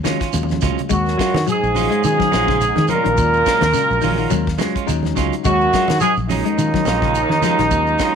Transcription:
0.04 clean electric guitar D#3 F#3 G#3 C#4 F4, tine electric piano F#3 G#3 C#4 F4, snare, closed hi-hat, high conga, low conga, shekere
0.20 clean electric guitar C#4 F4, muted clean electric guitar stroke, kick, snare, closed hi-hat, shekere
0.33 fingered electric bass D#2, tine electric piano F#3 G#3 C#4 F4, closed hi-hat, high conga, shekere
0.43 high conga
0.49 snare, high conga, shekere
0.61 fingered electric bass C#2, clean electric guitar F#3 G#3 C#4 F4, muted clean electric guitar stroke, kick, snare, closed hi-hat, low conga, shekere
0.71 low conga
0.78 closed hi-hat, low conga, shekere
0.89 fingered electric bass D#2, trombone section F#2, clean electric guitar G#3, horn section F#4, kick, closed hi-hat, shekere
1.06 snare, shekere
1.18 clean electric guitar F#3 G#3 C#4 F4, kick, snare, closed hi-hat, shekere
1.34 fingered electric bass D#3, snare, closed hi-hat, high conga, shekere
1.47 trombone section G#2, clean electric guitar F#3, horn section G#4, muted fingered electric bass stroke, closed hi-hat, shekere
1.63 fingered electric bass A#1, shekere
1.74 tine electric piano F#3 G#3 C#4 F4, clean electric guitar F#3 G#3 C#4 F4, open hi-hat, high conga, low conga, shekere
1.90 clean electric guitar G#3 C#4 F4, closed hi-hat, shekere
2.04 trombone section G#2, fingered electric bass D#3, tine electric piano F#3 G#3 C#4 F4, horn section G#4, closed hi-hat, shekere
2.18 clean electric guitar F#3, kick, snare, shekere
2.31 fingered electric bass A#1, clean electric guitar F#3 G#3 C#4 F4, snare, closed hi-hat, high conga, shekere
2.47 clean electric guitar C#3 G#3 C#4 F4, kick, snare, shekere
2.61 closed hi-hat, shekere
2.76 clean electric guitar D#3, fingered electric bass D#3, snare, high conga, shekere
2.88 clean electric guitar F3 G#3 C#4 F4, horn section A#4, muted fingered electric bass stroke, closed hi-hat, low conga, shekere
2.93 trombone section A#2
3.04 fingered electric bass A#1, clean electric guitar D#3, tine electric piano F#3 G#3 C#4 F4, closed hi-hat, shekere
3.17 fingered electric bass D#2, kick, closed hi-hat, shekere
3.33 shekere
3.46 clean electric guitar F#3 G#3 C#4 F4, kick, snare, closed hi-hat, shekere
3.61 fingered electric bass D#2, clean electric guitar D#3, snare, closed hi-hat, high conga, shekere
3.73 clean electric guitar C#3, tine electric piano F#3 G#3 C#4 F4, snare, closed hi-hat, shekere
3.90 fingered electric bass A#1, shekere
4.01 clean electric guitar D#3 F#3 G#3 C#4 F4, tine electric piano A#5, open hi-hat, high conga, low conga, shekere
4.17 clean electric guitar D#3 G#3 C#4 F4, tine electric piano F#5, shekere
4.30 fingered electric bass D#2, tine electric piano F#3 G#3 C#4 F4 F5, clean electric guitar F#3, closed hi-hat, shekere
4.47 kick, snare, shekere
4.58 tine electric piano F#3 G#3 C#4 F4 C#5, clean electric guitar F#3 G#3, muted clean electric guitar stroke, snare, closed hi-hat, high conga, low conga, shekere
4.75 clean electric guitar G#3 C#4 F4, kick, closed hi-hat, shekere
4.87 fingered electric bass D#2, tine electric piano F#3 G#3 C#4 D#4 D#5, closed hi-hat, shekere
5.03 snare, high conga, shekere
5.15 fingered electric bass C#2, clean electric guitar C#3 F#3 G#3 C#4 F4, tine electric piano C#5, kick, snare, closed hi-hat, low conga, shekere
5.32 closed hi-hat, shekere
5.45 fingered electric bass D#2, trombone section F#2, clean electric guitar G#3, horn section F#4, kick, closed hi-hat, shekere
5.61 shekere
5.72 clean electric guitar F#3 G#3 F4, kick, snare, closed hi-hat, shekere
5.88 fingered electric bass D#3, snare, closed hi-hat, high conga, shekere
6.00 trombone section G#2, clean electric guitar F#3, horn section G#4, muted fingered electric bass stroke, closed hi-hat, shekere
6.17 fingered electric bass A#1, shekere
6.29 trombone section D#2, clean electric guitar F#3 G#3 C#4, tine electric piano F#3 G#3 C#4 F4, horn section D#4, open hi-hat, high conga, low conga, shekere
6.45 clean electric guitar G#3 C#4, muted clean electric guitar stroke, closed hi-hat, shekere
6.57 fingered electric bass D#3, tine electric piano F#3 G#3 C#4 F4, closed hi-hat, shekere
6.74 clean electric guitar F#3, kick, snare, shekere
6.85 fingered electric bass A#1, clean electric guitar F#3 G#3 C#4 F4, snare, closed hi-hat, high conga, shekere
7.02 clean electric guitar C#3 G#3 C#4 F4, kick, snare, shekere
7.15 closed hi-hat, shekere
7.29 fingered electric bass D#3, clean electric guitar D#3, snare, high conga, shekere
7.42 clean electric guitar F3 F#3 G#3 C#4 F4, muted fingered electric bass stroke, snare, closed hi-hat, high conga, low conga, shekere
7.59 fingered electric bass A#1, clean electric guitar D#3, tine electric piano F#3 G#3 C#4 F4, snare, closed hi-hat, shekere
7.71 fingered electric bass D#2, kick, closed hi-hat, shekere
7.87 shekere
7.98 clean electric guitar F#3 G#3 C#4 F4, kick, snare, closed hi-hat, shekere

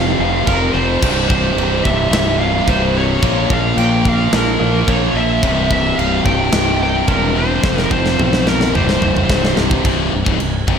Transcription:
Already playing: fingered electric bass F1, overdriven electric guitar F2 C3 F3, distorted electric guitar F2 C3 F3, lead electric guitar F5
0.19 fingered electric bass F1, overdriven electric guitar F2 C3 F3
0.47 fingered electric bass F1, overdriven electric guitar F2 C3 F3, lead electric guitar A#4, kick, china
0.73 fingered electric bass F1, distorted electric guitar F2 C3 F3, lead electric guitar C5
1.02 fingered electric bass C1, overdriven electric guitar C2 G2 C3, kick, crash, china
1.29 lead electric guitar C5, kick
1.56 fingered electric bass C1, china
1.83 fingered electric bass C1, distorted electric guitar C2 G2 C3, lead electric guitar E5, kick
2.11 fingered electric bass C1, lead electric guitar E5, snare, china
2.40 overdriven electric guitar C2 G2 C3, lead electric guitar F5
2.67 fingered electric bass C1, overdriven electric guitar C2 G2 C3, lead electric guitar C5, kick, china
2.95 distorted electric guitar C2 G2 C3, lead electric guitar C#5
3.22 fingered electric bass A#1, overdriven electric guitar A#2 F3 A#3, kick, china
3.50 fingered electric bass A#1, lead electric guitar F5, kick
3.77 fingered electric bass A#1, lead electric guitar G5, china
4.04 distorted electric guitar A#2 F3 A#3, kick
4.09 lead electric guitar F5
4.33 fingered electric bass A#1, lead electric guitar A#4, snare, china
4.59 fingered electric bass A#1, overdriven electric guitar A#2 F3 A#3
4.87 fingered electric bass A#1, overdriven electric guitar A#2 F3 A#3, lead electric guitar C#5, kick, china
5.14 fingered electric bass A#1, distorted electric guitar A#2 F3 A#3, lead electric guitar E5
5.43 fingered electric bass C1, overdriven electric guitar C2 G2 C3, kick, china
5.71 lead electric guitar E5, kick
5.99 fingered electric bass C1, lead electric guitar F5, china
6.24 fingered electric bass C1, distorted electric guitar C2 G2 C3, lead electric guitar G5, kick
6.52 fingered electric bass C1, snare, china
6.81 overdriven electric guitar C2 G2 C3, lead electric guitar G5
7.08 fingered electric bass E1, overdriven electric guitar C2 G2 C3, lead electric guitar A#4, kick, china
7.34 distorted electric guitar C2 G2 C3, lead electric guitar C5
7.63 fingered electric bass F1, overdriven electric guitar F2 C3 F3, kick, snare
7.78 snare
7.91 fingered electric bass F1, lead electric guitar C5, kick
8.06 snare
8.18 fingered electric bass B1, mid tom
8.33 snare
8.45 distorted electric guitar F2 C3 F3, lead electric guitar A#4, snare
8.61 snare
8.72 fingered electric bass C1, overdriven electric guitar C2, lead electric guitar C5, mid tom
8.77 overdriven electric guitar G2 C3
8.89 snare
9.01 fingered electric bass C1, mid tom
9.17 mid tom
9.29 fingered electric bass C1, kick, snare
9.45 snare
9.56 fingered electric bass C1, distorted electric guitar C2 G2 C3, snare
9.71 kick
9.84 fingered electric bass C1, overdriven electric guitar C2 G2 C3, kick, crash
10.14 fingered electric bass C1, overdriven electric guitar C2 G2
10.26 fingered electric bass C#1, overdriven electric guitar C#2 G#2, kick
10.40 fingered electric bass C1, overdriven electric guitar C2 G2, crash
10.67 fingered electric bass F1, overdriven electric guitar F2 C3, kick

